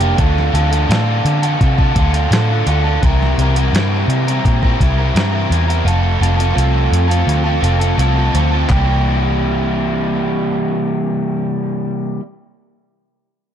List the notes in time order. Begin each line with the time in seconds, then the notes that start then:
Already playing: F1
0.00 G3 A#3 D4 G4, closed hi-hat
0.17 D2 D3 D4 F4 A4, kick, closed hi-hat
0.38 snare
0.52 D2 D3 D4 F4 A4, closed hi-hat
0.71 D4 F4 A4, closed hi-hat
0.89 A2 D3 D4 F4 A4, snare, closed hi-hat
1.25 D3, closed hi-hat
1.42 D4 F4 A4, closed hi-hat
1.61 C3, kick, closed hi-hat
1.78 D4 F4 A4, kick
1.96 D2 D3 D4 F4 A4, kick, closed hi-hat
2.13 D4 F4 A4, closed hi-hat
2.30 A2 D3 D4 F4 A4, snare, closed hi-hat
2.50 D4 F4 A4
2.66 D2 D3 D4 F4 A4, closed hi-hat
2.84 D4 F4 A4
3.02 C2 C3 E3 G3 C4 E4 A#4, kick, closed hi-hat
3.23 snare
3.38 C2 G3 C4 E4 A#4, closed hi-hat
3.55 G3 C4 E4 A#4, closed hi-hat
3.73 G2 C3 E3 G3 C4 E4 A#4, snare, closed hi-hat
4.08 C3, closed hi-hat
4.27 G3 C4 E4 A#4, closed hi-hat
4.45 A#2, kick, closed hi-hat
4.62 G3 C4 E4 A#4, kick
4.80 C2 G3 C4 E4 A#4, kick, closed hi-hat
4.98 G3 C4 E4 A#4
5.15 G2 C3 E3 G3 C4 E4 A#4, snare, closed hi-hat
5.32 G3 C4 E4 A#4
5.50 E2 G3 C4 E4 A#4, closed hi-hat
5.67 G3 C4 E4 A#4, closed hi-hat
5.84 F1 F3 A3 C4 F4 A4, closed hi-hat
6.20 F1 A3 C4 F4 A4, closed hi-hat
6.37 C4 F4 A4, closed hi-hat
6.53 C2 F3 A3 C4 F4 A4
6.58 closed hi-hat
6.92 F2, closed hi-hat
7.08 C4 F4 A4, closed hi-hat
7.27 D2, closed hi-hat
7.44 C4 F4 A4
7.61 F1 A3 C4 F4 A4, closed hi-hat
7.79 C4 F4 A4, closed hi-hat
7.97 C2 F3 A3 C4 F4 A4, closed hi-hat
8.15 C4 F4 A4
8.33 D2 A3 C4 F4 A4, closed hi-hat
8.51 C4 F4 A4
8.68 C2 C3 E3 G3 A#3 G4, kick, clap
8.72 E4